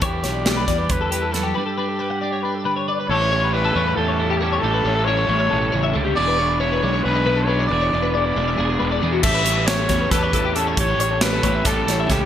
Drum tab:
CC |-------|-------|-------|-------|
HH |xxxxxxx|-------|-------|-------|
SD |-ooo--o|-------|-------|-------|
BD |o--oo--|-------|-------|-------|

CC |-------|-------|x------|-------|
HH |-------|-------|-xxxxxx|xxxxxxx|
SD |-------|-------|--ooo--|--o-ooo|
BD |-------|-------|o--ooo-|o--oo-o|